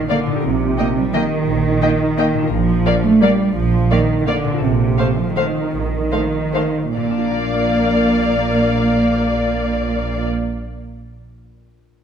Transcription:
0.00 0.26 A#2 soft
0.00 0.46 F3 soft
0.00 0.39 D4 soft
0.00 0.41 F4 soft
0.00 0.39 A#4 soft
0.10 0.44 D3 medium
0.10 0.18 A#3 soft
0.10 0.18 D5 soft
0.10 0.18 F5 soft
0.27 2.33 A#2 soft
0.31 2.46 D#4 soft
0.36 2.49 G4 soft
0.40 2.46 A#4 soft
0.45 0.73 A#1 soft
0.45 0.97 C3 medium
0.79 0.87 A#3 soft
0.79 0.87 D#5 soft
0.79 0.87 G5 soft
0.97 1.15 G3 medium
1.14 2.52 D#3 medium
1.14 1.23 A#3 soft
1.14 1.22 D#5 soft
1.14 1.23 G5 soft
1.47 1.76 A#1 soft
1.82 1.90 A#3 soft
1.82 1.90 D#5 soft
1.82 1.90 G5 soft
2.18 2.26 A#3 soft
2.18 2.26 D#5 soft
2.18 2.26 G5 soft
2.34 4.43 A#2 soft
2.38 4.57 D4 soft
2.43 4.52 F4 soft
2.47 2.80 A#1 soft
2.47 4.62 A#4 soft
2.52 3.03 F3 medium
2.86 2.94 A#3 soft
2.86 2.94 D5 soft
2.86 2.94 F5 soft
3.04 3.22 A3 medium
3.22 3.56 G3 medium
3.22 3.30 A#3 soft
3.22 3.30 D5 soft
3.22 3.31 F5 soft
3.56 3.85 A#1 medium
3.56 3.90 F3 medium
3.91 4.19 D#3 medium
3.91 3.99 A#3 soft
3.91 3.99 D5 soft
3.91 3.99 F5 soft
4.20 4.28 D#3 soft
4.27 4.62 D3 medium
4.27 4.35 A#3 soft
4.27 4.36 D5 soft
4.27 4.36 F5 soft
4.44 6.89 A#2 soft
4.49 6.92 C4 soft
4.54 7.17 F4 soft
4.58 6.96 A4 soft
4.62 4.92 A#1 soft
4.62 5.18 C3 medium
4.98 5.07 A3 soft
4.98 5.07 C5 soft
4.98 5.06 F5 soft
5.17 5.36 F3 medium
5.36 6.94 D#3 medium
5.36 5.44 A3 soft
5.36 5.45 C5 soft
5.36 5.45 F5 soft
5.73 6.05 A#1 soft
6.12 6.20 A3 soft
6.12 6.20 C5 soft
6.12 6.20 F5 soft
6.54 6.62 A3 soft
6.54 6.62 C5 soft
6.54 6.63 F5 soft
6.96 10.27 A#1 soft
6.96 10.27 A#2 soft
6.96 10.87 A#2 soft
6.96 10.27 A#3 soft
6.96 10.27 D5 soft
6.96 10.27 F5 soft
7.04 10.68 A#3 soft
7.11 10.75 D4 soft
7.18 10.82 F4 soft
7.25 10.89 A#4 soft
7.32 10.96 F5 soft

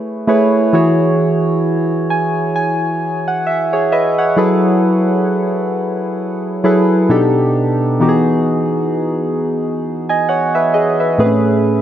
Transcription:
0.27 0.63 A3 medium
0.27 0.63 E4 medium
0.27 0.63 G#4 medium
0.27 0.64 B4 medium
0.27 0.64 C#5 loud
0.73 2.07 E3 medium
0.73 2.07 E4 medium
0.73 2.08 F#4 medium
0.73 2.08 G#4 medium
0.73 2.08 C#5 medium
2.10 2.52 G#5 medium
2.56 3.23 G#5 medium
3.28 3.45 F#5 medium
3.47 3.89 E5 medium
3.73 3.91 G#4 medium
3.73 3.91 C#5 medium
3.92 4.17 B4 medium
3.92 4.34 D#5 medium
3.92 4.17 E5 medium
4.18 4.61 C#5 medium
4.18 4.61 F#5 medium
4.36 5.71 F#3 medium
4.36 5.71 E4 medium
4.36 5.71 G#4 medium
4.36 5.71 A4 medium
4.36 5.72 B4 medium
6.64 7.09 F#3 medium
6.64 7.10 E4 medium
6.64 7.10 G#4 medium
6.64 7.10 A4 medium
6.64 7.10 B4 medium
7.09 7.85 B2 medium
7.09 7.85 B3 medium
7.09 7.85 D4 medium
7.09 7.86 D#4 medium
7.09 7.86 G4 medium
7.09 7.86 A4 medium
8.00 9.34 E3 medium
8.00 9.35 B3 medium
8.00 9.35 D#4 medium
8.00 9.35 F#4 medium
8.00 8.09 G4 medium
8.09 9.39 G#4 medium
10.09 10.27 D#5 medium
10.09 10.27 G#5 medium
10.29 10.54 C#5 medium
10.29 10.53 F#5 medium
10.55 10.73 B4 medium
10.55 10.73 E5 medium
10.74 10.99 G#4 medium
10.74 10.99 D#5 medium
11.00 11.19 B4 soft
11.00 11.43 E5 medium
11.18 11.82 A2 medium
11.18 11.82 A3 medium
11.18 11.26 C4 medium
11.18 11.82 G#4 medium
11.18 11.82 B4 medium
11.26 11.82 C#4 medium

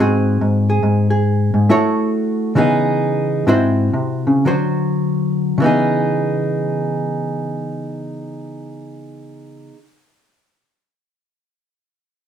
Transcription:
0.00 0.40 G#2 medium
0.00 1.68 C4 soft
0.00 1.68 F#4 medium
0.00 0.68 G#4 medium
0.00 1.67 C5 medium
0.41 0.82 G#2 medium
0.70 1.09 G#4 soft
0.83 1.53 G#2 medium
1.10 1.67 G#4 soft
1.54 1.69 G#2 medium
1.69 2.53 A3 medium
1.69 2.56 E4 medium
1.69 2.54 F#4 medium
1.69 2.54 C#5 medium
2.55 3.43 C#3 medium
2.55 3.52 E3 medium
2.55 3.46 B3 medium
2.55 3.46 D#4 medium
2.55 3.47 G#4 medium
3.47 3.93 G#2 medium
3.47 4.42 C4 medium
3.47 4.43 E4 medium
3.47 4.43 F#4 medium
3.47 4.43 C5 medium
3.93 4.25 C3 medium
4.27 4.44 C#3 medium
4.45 5.55 D3 medium
4.45 5.58 F#3 medium
4.45 5.56 F#4 medium
4.45 5.56 C5 medium
5.58 9.70 C#3 medium
5.58 9.73 E3 medium
5.62 9.74 B3 medium
5.62 9.76 D#4 medium
5.62 9.78 G#4 medium

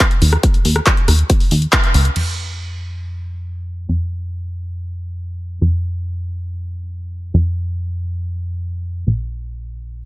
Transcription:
0.00 kick loud
0.00 clap loud
0.00 closed hi-hat medium
0.11 closed hi-hat soft
0.22 0.37 D#2 medium
0.22 open hi-hat loud
0.33 cross-stick medium
0.33 closed hi-hat soft
0.43 kick loud
0.43 closed hi-hat loud
0.54 closed hi-hat soft
0.65 0.80 D#2 loud
0.65 open hi-hat loud
0.76 cross-stick medium
0.76 closed hi-hat soft
0.86 kick loud
0.86 clap loud
0.86 closed hi-hat loud
0.97 closed hi-hat soft
1.08 1.23 D#2 loud
1.08 cross-stick medium
1.08 open hi-hat loud
1.19 closed hi-hat soft
1.30 kick loud
1.30 closed hi-hat loud
1.40 open hi-hat medium
1.51 1.67 D#2 medium
1.51 open hi-hat loud
1.62 closed hi-hat soft
1.73 kick loud
1.73 clap loud
1.73 closed hi-hat medium
1.84 closed hi-hat soft
1.94 2.10 C#2 loud
1.94 open hi-hat loud
2.05 closed hi-hat soft
2.16 3.87 F2 medium
2.16 crash medium
3.89 5.59 F2 medium
5.61 7.32 F2 medium
7.34 9.05 F2 medium
9.07 10.05 A#1 medium

